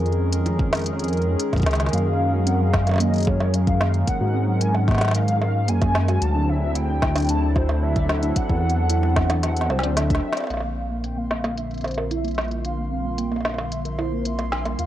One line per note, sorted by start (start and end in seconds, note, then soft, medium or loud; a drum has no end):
0.00 1.36 F2 medium
0.00 6.22 D#3 medium
0.00 6.22 G#3 medium
0.00 6.22 C#4 medium
0.00 7.50 G#4 medium
0.00 6.22 A#4 medium
0.06 closed hi-hat soft
0.12 closed hi-hat soft
0.33 closed hi-hat medium
0.46 closed hi-hat soft
0.46 high bongo soft
0.59 kick loud
0.73 snare loud
0.73 closed hi-hat soft
0.73 high bongo medium
0.75 closed hi-hat soft
0.77 closed hi-hat soft
0.79 closed hi-hat soft
0.82 closed hi-hat soft
0.84 closed hi-hat soft
0.86 closed hi-hat medium
0.99 closed hi-hat soft
1.04 closed hi-hat soft
1.08 closed hi-hat soft
1.13 closed hi-hat soft
1.17 closed hi-hat soft
1.22 closed hi-hat soft
1.40 closed hi-hat medium
1.53 kick medium
1.53 closed hi-hat soft
1.53 high bongo soft
1.56 kick medium
1.56 closed hi-hat soft
1.60 kick medium
1.60 closed hi-hat soft
1.63 1.89 C#2 medium
1.63 kick loud
1.63 snare loud
1.63 closed hi-hat soft
1.71 snare loud
1.71 closed hi-hat soft
1.75 closed hi-hat soft
1.80 snare medium
1.80 closed hi-hat soft
1.86 snare medium
1.86 closed hi-hat soft
1.93 4.04 F#2 loud
1.93 1.99 A#3 medium
1.93 2.48 F5 loud
1.93 closed hi-hat medium
2.33 2.39 F#4 loud
2.47 2.59 C4 loud
2.47 2.62 F#5 medium
2.47 closed hi-hat medium
2.60 2.69 F#3 loud
2.60 3.02 F5 loud
2.73 2.83 F#3 medium
2.73 kick loud
2.73 snare loud
2.87 2.92 F#3 medium
2.87 closed hi-hat soft
2.87 high bongo soft
2.89 high bongo soft
2.91 high bongo soft
2.94 high bongo medium
2.96 high bongo medium
2.98 3.09 A#3 medium
2.98 3.29 D#5 loud
2.98 closed hi-hat medium
2.98 high bongo medium
3.14 3.19 F#3 medium
3.14 closed hi-hat soft
3.16 closed hi-hat soft
3.18 closed hi-hat soft
3.20 closed hi-hat soft
3.23 closed hi-hat soft
3.25 3.36 G#3 medium
3.25 3.56 C#5 medium
3.25 kick loud
3.25 closed hi-hat soft
3.25 high bongo medium
3.40 3.50 F#3 medium
3.40 high bongo medium
3.54 3.63 F#3 medium
3.54 4.07 F5 loud
3.54 closed hi-hat medium
3.67 3.73 F#3 loud
3.67 kick loud
3.67 closed hi-hat soft
3.81 3.86 A#3 medium
3.81 snare loud
3.94 closed hi-hat soft
4.07 4.63 F#5 loud
4.07 kick medium
4.07 closed hi-hat medium
4.21 5.70 G#2 medium
4.21 4.26 F#4 loud
4.34 4.47 C4 loud
4.48 4.57 F#3 loud
4.61 4.70 F#3 medium
4.61 4.76 G#5 loud
4.61 closed hi-hat medium
4.74 4.80 F#3 medium
4.74 5.16 F#5 loud
4.74 high bongo soft
4.88 4.97 A#3 medium
4.88 kick loud
4.88 snare medium
4.91 snare medium
4.95 snare medium
4.98 5.07 F#3 medium
4.98 snare medium
5.01 snare medium
5.01 closed hi-hat medium
5.01 high bongo medium
5.05 snare medium
5.08 snare loud
5.11 5.24 G#3 medium
5.11 5.41 F5 loud
5.11 snare loud
5.11 closed hi-hat medium
5.28 5.37 F#3 medium
5.28 closed hi-hat soft
5.41 5.51 F#3 medium
5.41 5.70 F5 loud
5.41 high bongo medium
5.55 5.60 F#3 loud
5.68 6.18 F#2 loud
5.68 5.74 A#3 medium
5.68 6.24 G#5 loud
5.68 closed hi-hat medium
5.82 kick loud
5.82 closed hi-hat soft
5.82 high bongo medium
5.95 snare loud
6.08 6.14 F#4 loud
6.08 closed hi-hat soft
6.08 high bongo soft
6.22 8.33 D2 loud
6.22 10.50 F#3 medium
6.22 6.34 F#4 loud
6.22 6.50 A5 loud
6.22 closed hi-hat medium
6.31 14.79 C4 medium
6.31 6.44 D4 loud
6.31 10.50 E4 medium
6.43 11.92 D4 medium
6.48 6.58 D4 medium
6.48 6.77 E5 loud
6.62 6.67 D4 medium
6.75 6.84 F#4 medium
6.75 7.31 G5 loud
6.75 closed hi-hat medium
6.89 6.94 D4 medium
7.02 7.11 E4 medium
7.02 kick loud
7.02 snare loud
7.09 10.50 A4 medium
7.15 7.25 D4 medium
7.15 closed hi-hat soft
7.15 high bongo medium
7.18 closed hi-hat soft
7.20 closed hi-hat soft
7.22 closed hi-hat soft
7.25 closed hi-hat soft
7.27 7.38 D4 medium
7.27 closed hi-hat soft
7.29 7.58 A5 loud
7.29 closed hi-hat medium
7.42 7.48 D4 medium
7.56 7.61 F#4 medium
7.56 7.84 C5 loud
7.56 kick loud
7.56 high bongo medium
7.69 high bongo medium
7.83 8.36 E5 loud
7.96 8.01 D5 loud
7.96 kick loud
7.96 closed hi-hat soft
8.09 8.22 F#4 loud
8.09 snare loud
8.23 8.32 D4 loud
8.23 closed hi-hat soft
8.36 8.45 D4 medium
8.36 9.39 F#5 loud
8.36 kick medium
8.36 closed hi-hat medium
8.49 9.69 E2 medium
8.49 8.55 D4 medium
8.49 kick medium
8.63 8.72 F#4 medium
8.70 closed hi-hat soft
8.76 8.82 D4 medium
8.90 8.99 E4 medium
8.90 closed hi-hat medium
9.03 9.12 D4 medium
9.03 high bongo soft
9.16 9.26 D4 medium
9.16 kick loud
9.16 snare loud
9.30 9.35 D4 loud
9.30 closed hi-hat medium
9.30 high bongo medium
9.43 9.49 F#4 medium
9.43 9.68 F#5 loud
9.43 snare medium
9.43 closed hi-hat medium
9.57 closed hi-hat soft
9.61 snare medium
9.70 9.85 C2 loud
9.70 9.95 C5 medium
9.70 high bongo medium
9.79 snare medium
9.83 10.20 D2 medium
9.83 9.92 D5 medium
9.83 closed hi-hat soft
9.97 10.02 A4 medium
9.97 10.47 E5 loud
9.97 snare medium
9.97 closed hi-hat medium
10.10 10.19 D4 loud
10.10 kick loud
10.10 closed hi-hat soft
10.15 snare medium
10.23 10.33 D4 medium
10.33 snare loud
10.37 10.42 D5 medium
10.37 closed hi-hat soft
10.37 high bongo soft
10.40 high bongo soft
10.44 high bongo soft
10.47 14.76 A#1 medium
10.47 10.59 A#3 medium
10.47 14.86 A#3 medium
10.47 11.05 F5 medium
10.47 14.86 C6 medium
10.47 closed hi-hat medium
10.47 high bongo soft
10.50 14.79 D3 medium
10.50 high bongo soft
10.54 high bongo soft
10.57 high bongo soft
10.60 10.69 A#3 medium
10.60 high bongo soft
10.67 14.79 G3 medium
10.77 10.86 D4 medium
10.77 14.86 A#4 medium
10.90 10.96 A#3 medium
11.04 11.13 C4 medium
11.04 11.19 G5 medium
11.04 closed hi-hat medium
11.17 11.26 A#3 medium
11.17 11.59 F5 medium
11.31 11.40 A#3 medium
11.31 14.79 F4 medium
11.31 snare loud
11.44 11.50 A#3 loud
11.44 closed hi-hat soft
11.44 high bongo medium
11.57 11.63 D4 medium
11.57 11.86 E5 loud
11.57 closed hi-hat medium
11.71 closed hi-hat soft
11.74 closed hi-hat soft
11.78 closed hi-hat soft
11.81 closed hi-hat soft
11.84 12.10 C5 medium
11.84 closed hi-hat soft
11.84 high bongo medium
11.88 closed hi-hat soft
11.91 closed hi-hat soft
11.94 12.03 A#4 loud
11.94 closed hi-hat soft
11.94 high bongo medium
12.11 12.24 E4 medium
12.11 12.61 E5 medium
12.11 closed hi-hat medium
12.24 12.34 A#3 loud
12.24 closed hi-hat soft
12.28 closed hi-hat soft
12.31 closed hi-hat soft
12.35 12.47 A#3 medium
12.35 snare loud
12.35 closed hi-hat soft
12.38 closed hi-hat soft
12.41 closed hi-hat soft
12.45 closed hi-hat soft
12.48 12.57 A#3 medium
12.48 closed hi-hat soft
12.51 closed hi-hat soft
12.65 12.74 D4 medium
12.65 13.19 F5 loud
12.65 closed hi-hat medium
12.78 12.83 A#3 medium
12.91 13.01 C4 medium
13.05 13.14 A#3 medium
13.18 13.27 A#3 medium
13.18 13.33 G5 medium
13.18 closed hi-hat medium
13.31 13.37 A#3 loud
13.31 13.73 F5 medium
13.31 high bongo soft
13.36 high bongo soft
13.41 high bongo soft
13.45 snare loud
13.45 high bongo soft
13.49 high bongo soft
13.54 high bongo soft
13.58 high bongo medium
13.72 14.00 E5 loud
13.72 closed hi-hat medium
13.85 13.91 A#4 medium
13.85 closed hi-hat medium
13.98 14.11 E4 loud
13.98 14.27 C5 medium
13.98 high bongo soft
14.12 14.21 A#3 medium
14.25 14.35 A#3 medium
14.25 14.78 E5 medium
14.25 closed hi-hat medium
14.39 14.44 A#3 medium
14.39 closed hi-hat soft
14.39 high bongo soft
14.52 14.61 D4 medium
14.52 snare loud
14.65 14.71 A#3 medium
14.65 closed hi-hat soft
14.65 high bongo soft
14.79 14.86 D#2 medium
14.79 14.86 D#3 medium
14.79 14.86 F4 medium
14.79 14.86 F5 loud
14.79 closed hi-hat medium